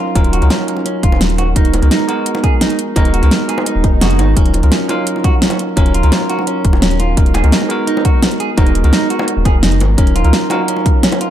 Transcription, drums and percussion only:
0.15 kick, closed hi-hat, high bongo
0.24 closed hi-hat
0.33 closed hi-hat
0.42 closed hi-hat
0.50 snare, closed hi-hat, high bongo
0.68 closed hi-hat
0.77 high bongo
0.86 closed hi-hat
1.03 kick, closed hi-hat
1.12 high bongo
1.21 snare, closed hi-hat
1.30 closed hi-hat
1.38 closed hi-hat, high bongo
1.56 kick, closed hi-hat
1.65 closed hi-hat
1.74 closed hi-hat, high bongo
1.82 closed hi-hat
1.91 snare, closed hi-hat
2.00 high bongo
2.09 closed hi-hat
2.26 closed hi-hat
2.35 high bongo
2.44 kick, closed hi-hat
2.61 snare, closed hi-hat, high bongo
2.70 closed hi-hat
2.79 closed hi-hat
2.96 kick, closed hi-hat, high bongo
3.05 closed hi-hat
3.14 closed hi-hat
3.23 closed hi-hat, high bongo
3.31 snare, closed hi-hat
3.49 closed hi-hat
3.58 high bongo
3.66 closed hi-hat
3.84 kick, closed hi-hat, high bongo
4.01 snare, closed hi-hat
4.10 closed hi-hat
4.19 closed hi-hat, high bongo
4.37 kick, closed hi-hat
4.46 closed hi-hat
4.54 closed hi-hat, high bongo
4.63 closed hi-hat
4.72 snare, closed hi-hat
4.89 closed hi-hat, high bongo
5.07 closed hi-hat
5.16 high bongo
5.24 kick, closed hi-hat
5.42 snare, closed hi-hat
5.50 closed hi-hat, high bongo
5.59 closed hi-hat
5.77 kick, closed hi-hat, high bongo
5.86 closed hi-hat
5.94 closed hi-hat
6.03 closed hi-hat
6.12 snare, closed hi-hat, high bongo
6.30 closed hi-hat
6.39 high bongo
6.47 closed hi-hat
6.65 kick, closed hi-hat
6.73 high bongo
6.82 snare, closed hi-hat
6.91 closed hi-hat
6.99 closed hi-hat, high bongo
7.17 kick, closed hi-hat
7.26 closed hi-hat
7.34 closed hi-hat, high bongo
7.44 closed hi-hat
7.52 snare, closed hi-hat
7.61 high bongo
7.70 closed hi-hat
7.87 closed hi-hat
7.97 high bongo
8.05 kick, closed hi-hat
8.23 snare, closed hi-hat, high bongo
8.31 closed hi-hat
8.40 closed hi-hat
8.58 kick, closed hi-hat, high bongo
8.67 closed hi-hat
8.75 closed hi-hat
8.84 closed hi-hat, high bongo
8.93 snare, closed hi-hat
9.10 closed hi-hat
9.19 high bongo
9.28 closed hi-hat
9.45 kick, closed hi-hat, high bongo
9.63 snare, closed hi-hat
9.72 closed hi-hat
9.80 closed hi-hat, high bongo
9.98 kick, closed hi-hat
10.07 closed hi-hat
10.16 closed hi-hat, high bongo
10.24 closed hi-hat
10.33 snare, closed hi-hat
10.50 closed hi-hat, high bongo
10.68 closed hi-hat
10.76 high bongo
10.86 kick, closed hi-hat
11.03 snare, closed hi-hat
11.12 closed hi-hat, high bongo
11.21 closed hi-hat

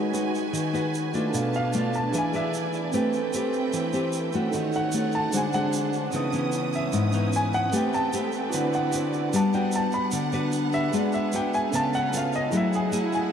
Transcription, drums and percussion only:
0.14 shaker
0.35 shaker
0.54 shaker
0.74 shaker
0.94 shaker
1.14 shaker
1.34 shaker
1.54 shaker
1.73 shaker
1.93 shaker
2.14 shaker
2.34 shaker
2.54 shaker
2.73 shaker
2.93 shaker
3.13 shaker
3.33 shaker
3.53 shaker
3.73 shaker
3.93 shaker
4.13 shaker
4.33 shaker
4.53 shaker
4.73 shaker
4.92 shaker
5.12 shaker
5.33 shaker
5.53 shaker
5.73 shaker
5.93 shaker
6.12 shaker
6.33 shaker
6.52 shaker
6.73 shaker
6.93 shaker
7.12 shaker
7.33 shaker
7.53 shaker
7.73 shaker
7.93 shaker
8.13 shaker
8.32 shaker
8.53 shaker
8.73 shaker
8.92 shaker
9.13 shaker
9.33 shaker
9.53 shaker
9.72 shaker
9.92 shaker
10.12 shaker
10.32 shaker
10.52 shaker
10.73 shaker
10.93 shaker
11.12 shaker
11.32 shaker
11.54 shaker
11.73 shaker
11.94 shaker
12.13 shaker
12.33 shaker
12.52 shaker
12.73 shaker
12.92 shaker
13.13 shaker

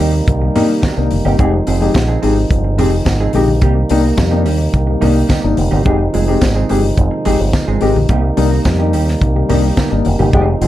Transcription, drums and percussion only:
0.00 open hi-hat
0.28 kick, closed hi-hat, muted conga
0.56 open hi-hat, low conga
0.82 kick, snare, closed hi-hat, tambourine, high conga
1.11 open hi-hat, high conga
1.25 high conga
1.39 kick, closed hi-hat, muted conga
1.67 open hi-hat, muted conga
1.94 kick, snare, closed hi-hat, tambourine, high conga
2.23 open hi-hat
2.51 kick, closed hi-hat, muted conga
2.79 open hi-hat, low conga
3.05 kick, snare, closed hi-hat, tambourine, high conga
3.33 open hi-hat, high conga
3.48 high conga
3.61 kick, closed hi-hat, muted conga
3.89 open hi-hat, muted conga
4.17 kick, snare, closed hi-hat, tambourine, high conga
4.46 open hi-hat
4.74 kick, closed hi-hat, muted conga
5.02 open hi-hat, low conga
5.29 kick, snare, closed hi-hat, tambourine, high conga
5.57 open hi-hat, high conga
5.72 high conga
5.85 kick, closed hi-hat, muted conga
6.14 open hi-hat
6.41 kick, snare, closed hi-hat, tambourine, high conga
6.69 open hi-hat
6.98 kick, closed hi-hat, muted conga
7.25 open hi-hat, low conga
7.53 kick, snare, closed hi-hat, tambourine, high conga
7.81 open hi-hat
7.96 high conga
8.09 kick, closed hi-hat, muted conga
8.37 open hi-hat, muted conga
8.65 kick, snare, closed hi-hat, tambourine, high conga
8.93 open hi-hat
9.08 snare
9.21 kick, closed hi-hat, muted conga
9.50 open hi-hat, low conga
9.77 kick, snare, closed hi-hat, tambourine, high conga
10.05 open hi-hat, high conga
10.20 high conga
10.33 kick, closed hi-hat, muted conga
10.62 open hi-hat, muted conga

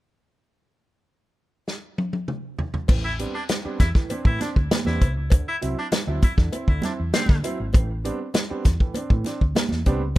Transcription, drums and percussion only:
1.68 snare
1.98 high tom
2.13 high tom
2.28 mid tom
2.59 floor tom
2.74 floor tom
2.88 kick, crash, cowbell, muted conga
3.19 closed hi-hat
3.49 snare, closed hi-hat, cowbell, high conga
3.80 kick, snare, closed hi-hat, muted conga
3.95 kick, snare
4.10 closed hi-hat, cowbell, muted conga
4.25 kick
4.41 snare, closed hi-hat, muted conga
4.56 kick
4.71 snare, closed hi-hat, cowbell, high conga
4.85 snare, high conga
5.01 kick, closed hi-hat, cowbell
5.30 kick, closed hi-hat, cowbell
5.62 closed hi-hat
5.92 snare, closed hi-hat, cowbell, high conga
6.22 kick, closed hi-hat, muted conga
6.38 kick, snare
6.53 closed hi-hat, cowbell, muted conga
6.68 kick
6.82 snare, closed hi-hat, muted conga, low conga
7.13 snare, closed hi-hat, cowbell, high conga
7.26 kick, snare, high conga
7.44 closed hi-hat, cowbell
7.73 kick, closed hi-hat, cowbell, muted conga
8.05 closed hi-hat
8.34 snare, closed hi-hat, cowbell, high conga
8.65 kick, snare, closed hi-hat, muted conga
8.80 kick
8.94 closed hi-hat, cowbell, muted conga
9.10 kick
9.24 snare, closed hi-hat, muted conga
9.41 kick
9.55 snare, closed hi-hat, cowbell, high conga
9.69 snare, high conga
9.86 kick, closed hi-hat, cowbell

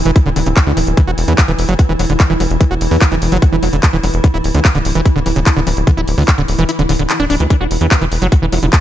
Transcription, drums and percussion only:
0.06 closed hi-hat
0.16 kick, closed hi-hat
0.36 open hi-hat
0.46 closed hi-hat
0.57 kick, clap, closed hi-hat
0.77 open hi-hat
0.87 closed hi-hat
0.97 kick, closed hi-hat
1.18 open hi-hat
1.28 closed hi-hat
1.38 kick, clap, closed hi-hat
1.48 closed hi-hat
1.59 open hi-hat
1.69 closed hi-hat
1.79 kick, closed hi-hat
1.99 open hi-hat
2.10 closed hi-hat
2.20 kick, clap, closed hi-hat
2.40 open hi-hat
2.50 closed hi-hat
2.61 kick, closed hi-hat
2.81 open hi-hat
2.91 open hi-hat
3.01 kick, clap, closed hi-hat
3.12 closed hi-hat
3.22 open hi-hat
3.32 closed hi-hat
3.42 kick, closed hi-hat
3.63 open hi-hat
3.73 closed hi-hat
3.83 kick, clap, closed hi-hat
4.03 open hi-hat
4.14 closed hi-hat
4.24 kick, closed hi-hat
4.44 open hi-hat
4.54 closed hi-hat
4.65 kick, clap, closed hi-hat
4.75 closed hi-hat
4.85 open hi-hat
4.95 closed hi-hat
5.06 kick, closed hi-hat
5.26 open hi-hat
5.36 closed hi-hat
5.46 kick, clap, closed hi-hat
5.67 open hi-hat
5.77 closed hi-hat
5.87 kick, closed hi-hat
6.08 open hi-hat
6.18 open hi-hat
6.28 kick, clap, closed hi-hat
6.38 closed hi-hat
6.48 open hi-hat
6.59 closed hi-hat
6.69 closed hi-hat
6.79 closed hi-hat
6.89 open hi-hat
6.99 closed hi-hat
7.10 clap, closed hi-hat
7.20 closed hi-hat
7.30 open hi-hat
7.40 closed hi-hat
7.50 kick, closed hi-hat
7.71 open hi-hat
7.81 closed hi-hat
7.91 kick, clap, closed hi-hat
8.01 closed hi-hat
8.12 open hi-hat
8.22 closed hi-hat
8.32 kick, closed hi-hat
8.52 open hi-hat
8.63 closed hi-hat
8.73 kick, clap, closed hi-hat

